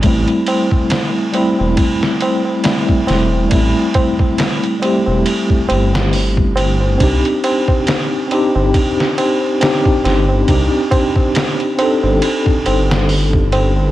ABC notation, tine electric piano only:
X:1
M:4/4
L:1/8
Q:"Swing 16ths" 1/4=69
K:Am
V:1 name="Tine electric piano"
[G,A,CE]3 [G,A,CE]3 [G,A,CE]2 | [G,A,CE]3 [G,A,CG]4- [G,A,CG] | [CD_EG]3 [CDEG]3 [CDEG]2 | [CD_EG]3 [CDEA]4- [CDEA] |]